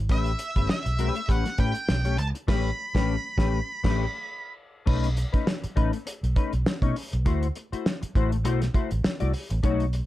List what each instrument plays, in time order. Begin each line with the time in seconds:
0.09 fingered electric bass A1, clean electric guitar A3 C#4 G4 B4, lead electric guitar E5, kick, closed hi-hat
0.26 closed hi-hat
0.39 muted clean electric guitar stroke, closed hi-hat
0.56 fingered electric bass G1, clean electric guitar A3 C#4 G4 B4, kick, closed hi-hat
0.69 lead electric guitar E5, muted fingered electric bass stroke, snare
0.85 fingered electric bass B1, muted clean electric guitar stroke, closed hi-hat
0.98 clean electric guitar A3 C#4 G4 B4, closed hi-hat
1.16 muted clean electric guitar stroke, closed hi-hat
1.28 fingered electric bass A1, clean electric guitar A3 C#4 G4 B4, lead electric guitar F#5, kick, closed hi-hat
1.45 muted clean electric guitar stroke, snare, closed hi-hat
1.58 fingered electric bass A2, clean electric guitar A3 C#4 G4 B4, lead electric guitar G5, kick, closed hi-hat
1.74 muted clean electric guitar stroke, closed hi-hat
1.88 fingered electric bass B1, muted clean electric guitar stroke, snare
2.05 clean electric guitar A3 C#4 G4 C#5, closed hi-hat
2.17 fingered electric bass C#2, lead electric guitar A5, muted clean electric guitar stroke, closed hi-hat
2.35 muted clean electric guitar stroke, closed hi-hat
2.48 fingered electric bass A1, clean electric guitar A3 C#4 G4 B4, lead electric guitar B5, kick, snare, crash
2.94 fingered electric bass A1, clean electric guitar A3 C#4 G4 B4, kick, snare
3.37 fingered electric bass A1, clean electric guitar A3 C#4 G4 B4, kick, snare
3.84 fingered electric bass A1, clean electric guitar A3 C#4 G4 B4, kick, snare, crash
4.86 fingered electric bass B1, clean electric guitar A3 C#4 D#4 B4, kick, crash
5.04 closed hi-hat
5.17 muted clean electric guitar stroke, closed hi-hat
5.33 clean electric guitar A3 C#4 D#4 B4, kick, closed hi-hat
5.47 snare
5.63 muted clean electric guitar stroke, muted fingered electric bass stroke, closed hi-hat
5.76 fingered electric bass A1, clean electric guitar A3 C#4 D#4 B4, kick, closed hi-hat
5.92 muted clean electric guitar stroke, closed hi-hat
6.05 muted clean electric guitar stroke, closed hi-hat
6.23 fingered electric bass B1, closed hi-hat
6.36 clean electric guitar A3 C#4 D#4 B4, kick, closed hi-hat
6.53 fingered electric bass B1, muted clean electric guitar stroke, closed hi-hat
6.66 muted clean electric guitar stroke, snare
6.82 fingered electric bass B2, clean electric guitar A3 C#4 D#4 C#5, kick, closed hi-hat
6.96 muted clean electric guitar stroke, open hi-hat
7.13 fingered electric bass B1, muted clean electric guitar stroke, closed hi-hat
7.25 fingered electric bass D2, clean electric guitar A3 E4 F#4 C5, kick, closed hi-hat
7.43 closed hi-hat
7.55 muted clean electric guitar stroke, closed hi-hat
7.72 clean electric guitar A3 E4 F#4 C5, muted fingered electric bass stroke, closed hi-hat
7.86 snare
8.02 muted clean electric guitar stroke, muted fingered electric bass stroke, closed hi-hat
8.15 fingered electric bass A1, clean electric guitar A3 E4 F#4 C5, kick, closed hi-hat
8.32 muted clean electric guitar stroke, closed hi-hat
8.44 fingered electric bass B1, clean electric guitar A3 E4 F#4 C5, closed hi-hat
8.61 muted clean electric guitar stroke, snare, closed hi-hat
8.74 clean electric guitar A3 E4 F#4 C5, kick, closed hi-hat
8.91 fingered electric bass A1, muted clean electric guitar stroke, closed hi-hat
9.04 muted clean electric guitar stroke, snare
9.20 fingered electric bass C2, clean electric guitar A3 E4 F#4 D5, closed hi-hat
9.33 muted clean electric guitar stroke, open hi-hat
9.50 fingered electric bass A1, muted clean electric guitar stroke, closed hi-hat
9.63 fingered electric bass B1, clean electric guitar A3 D#4 F#4 C#5, kick, closed hi-hat
9.80 closed hi-hat
9.93 muted clean electric guitar stroke, closed hi-hat